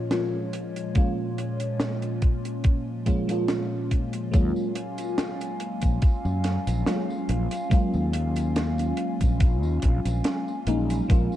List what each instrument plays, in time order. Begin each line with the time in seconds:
Already playing: ambient pad A#2 G#3 C#5
0.10 fm electric piano F3 G#3 A#3 C#4 F4, snare, closed hi-hat
0.53 closed hi-hat
0.76 closed hi-hat
0.95 fm electric piano F3 G#3 A#3 C#4 F4, kick, closed hi-hat
1.38 closed hi-hat
1.60 closed hi-hat
1.80 snare, closed hi-hat
2.02 closed hi-hat
2.22 kick, closed hi-hat
2.45 closed hi-hat
2.64 kick, closed hi-hat
3.06 fm electric piano F3 G#3 A#3 C#4 F4, kick, closed hi-hat
3.28 fm electric piano F3 G#3 A#3 C#4 F4, closed hi-hat
3.48 snare, closed hi-hat
3.91 kick, closed hi-hat
4.13 closed hi-hat
4.31 fretless electric bass D#2, fm electric piano F#3 G#3 A#3 C#4 F4, ambient pad F#3 C#4 F5 G#5, kick, closed hi-hat, tambourine
4.56 tambourine
4.75 closed hi-hat
4.98 closed hi-hat, tambourine
5.18 snare, closed hi-hat, tambourine
5.41 closed hi-hat, tambourine
5.60 closed hi-hat
5.82 fretless electric bass A#1, kick, closed hi-hat, tambourine
6.02 muted fretless electric bass stroke, kick, closed hi-hat, tambourine
6.25 fretless electric bass F#2, tambourine
6.44 snare, closed hi-hat
6.67 fretless electric bass A#1, closed hi-hat, tambourine
6.86 fm electric piano F#3 G#3 A#3 C#4 F4, snare, closed hi-hat, tambourine
7.10 tambourine
7.29 fretless electric bass A#1, closed hi-hat
7.51 closed hi-hat, tambourine
7.70 fm electric piano F#3 G#3 A#3 C#4 F4, muted fretless electric bass stroke, kick, closed hi-hat, tambourine
7.94 fretless electric bass D#2, tambourine
8.13 closed hi-hat
8.36 closed hi-hat, tambourine
8.56 snare, closed hi-hat, tambourine
8.78 closed hi-hat, tambourine
8.97 closed hi-hat
9.20 fretless electric bass A#1, kick, closed hi-hat, tambourine
9.40 kick, closed hi-hat, tambourine
9.63 fretless electric bass D#2, tambourine
9.82 fretless electric bass A#1, kick, closed hi-hat
10.05 fretless electric bass A#1, closed hi-hat, tambourine
10.24 snare, closed hi-hat, tambourine
10.48 tambourine
10.67 fretless electric bass A#1, fm electric piano F#3 G#3 A#3 C#4 D#4, closed hi-hat
10.90 closed hi-hat, tambourine
11.08 fretless electric bass A#1, fm electric piano F3 G#3 A#3 C#4 F4, ambient pad A#4, kick, closed hi-hat, tambourine
11.32 tambourine